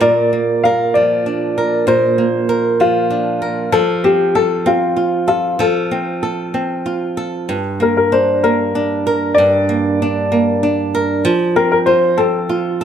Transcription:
Already playing: A#3
0.00 A#2 A#4 D5
0.33 A#3
0.64 A#4 F5
0.94 F3 D5
1.26 D4
1.58 A#4
1.87 A#2 A#4 C5
2.18 A#3
2.49 A#4
2.80 F3 F4
3.10 D4
3.42 A#4
3.72 F3 A4
4.04 C4 G4
4.35 A4
4.66 C4 F4
4.96 F4
5.28 F4 A4
5.59 F3 A4
5.91 C4
6.23 A4
6.54 C4
6.86 F4
7.17 A4
7.49 G2
7.80 A#3 A#4
7.97 A#4
8.12 D4 C5
8.43 A#3 A#4
8.75 D4
9.07 A#4
9.35 G2 D5
9.69 A#3
10.02 D4
10.32 A#3
10.63 D4
10.95 A#4
11.25 F3
11.56 C4 A#4
11.72 A#4
11.86 F4 C5
12.18 C4 A4
12.49 F4
12.81 A4

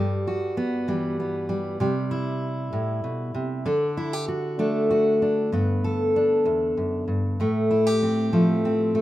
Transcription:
Already playing: G2 G3
0.27 F#4
0.57 B3
0.88 E3 G3
1.20 B3
1.49 G3
1.80 C3 G3
2.11 E4
2.73 A2
3.04 B2
3.34 C3
3.66 D3 D4
3.97 E4
4.13 G4
4.28 F#4
4.59 A3 D4
4.91 F#4
5.22 D4
5.52 G2 B3
5.84 A4
6.16 D4
6.45 E2
6.77 F#2
7.08 G2
7.40 A2 A3
7.71 E4
7.87 G4
8.03 C4
8.33 F3 A3
8.65 C4
8.95 A3

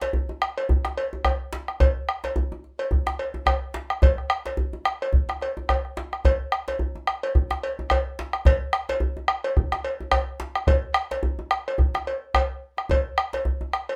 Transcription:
0.01 cowbell, djembe slap
0.13 djembe bass
0.29 djembe tone
0.42 bombo rim, djembe slap
0.58 cowbell
0.69 bombo rim, bombo low, djembe bass
0.85 bombo rim, djembe slap
0.97 cowbell
1.13 djembe tone
1.25 bombo rim, cowbell, djembe slap, djembe bass
1.53 djembe slap
1.68 bombo rim, djembe slap
1.80 bombo rim, bombo low, cowbell, djembe tone, djembe bass
2.09 bombo rim
2.24 cowbell, djembe slap
2.36 djembe bass
2.52 djembe tone
2.64 djembe slap
2.79 cowbell
2.91 bombo rim, bombo low, djembe bass
3.07 bombo rim, djembe slap
3.19 cowbell
3.34 djembe tone
3.46 bombo rim, cowbell, djembe slap, djembe bass
3.74 djembe slap
3.90 bombo rim, djembe slap
4.02 bombo low, cowbell, djembe slap, djembe tone, djembe bass
4.18 bombo rim
4.30 bombo rim
4.46 cowbell, djembe slap
4.57 djembe bass
4.73 djembe tone
4.85 bombo rim, djembe slap
5.02 cowbell
5.13 bombo low, djembe slap, djembe bass
5.29 bombo rim, djembe slap
5.41 bombo rim, cowbell, djembe slap
5.57 djembe slap, djembe tone
5.69 bombo rim, cowbell, djembe slap, djembe bass
5.85 bombo rim
5.97 bombo rim, djembe slap
6.12 bombo rim, djembe slap
6.25 bombo rim, bombo low, cowbell, djembe tone, djembe bass
6.52 bombo rim
6.68 cowbell, djembe slap
6.79 djembe bass
6.95 djembe tone
7.07 bombo rim, djembe slap
7.23 cowbell
7.35 bombo rim, bombo low, djembe bass
7.50 bombo rim, djembe slap
7.63 cowbell
7.79 djembe tone
7.90 bombo rim, cowbell, djembe slap, djembe bass
8.19 djembe slap
8.33 bombo rim, djembe slap
8.45 bombo rim, bombo low, cowbell, djembe tone, djembe bass
8.73 bombo rim
8.89 cowbell, djembe slap
9.00 djembe bass
9.17 djembe tone
9.28 bombo rim, djembe slap
9.44 cowbell
9.57 bombo rim, bombo low, djembe bass
9.72 bombo rim, djembe slap
9.84 cowbell
10.00 djembe tone
10.11 bombo rim, cowbell, djembe slap, djembe bass
10.40 djembe slap
10.55 bombo rim, djembe slap
10.67 bombo rim, bombo low, cowbell, djembe tone, djembe bass
10.94 bombo rim
11.11 cowbell, djembe slap
11.23 djembe bass
11.39 djembe tone
11.51 bombo rim, djembe slap
11.68 cowbell
11.78 bombo rim, bombo low, djembe bass
11.94 bombo rim, djembe slap
12.07 cowbell
12.34 bombo rim, cowbell, djembe slap, djembe bass
12.77 bombo rim, djembe slap
12.89 bombo low, cowbell, djembe tone, djembe bass
13.18 bombo rim
13.33 cowbell, djembe slap
13.45 djembe slap, djembe bass
13.61 djembe tone
13.73 bombo rim
13.89 cowbell

